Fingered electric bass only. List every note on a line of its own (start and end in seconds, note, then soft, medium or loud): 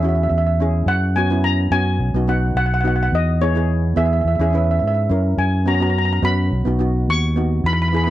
0.00 0.27 E2 medium
0.30 0.83 E2 medium
0.86 1.67 F#2 loud
1.71 1.97 F#2 medium
1.99 2.13 B1 loud
2.14 2.53 B1 medium
2.55 3.08 B1 medium
3.12 3.93 E2 loud
3.97 4.23 E2 medium
4.25 4.39 E2 loud
4.39 4.78 E2 medium
4.82 5.07 G#2 medium
5.10 5.35 F#2 medium
5.38 6.18 F#2 loud
6.23 6.49 F#2 medium
6.51 6.65 B1 loud
6.66 7.05 B1 medium
7.08 7.60 D#2 medium
7.64 8.10 E2 loud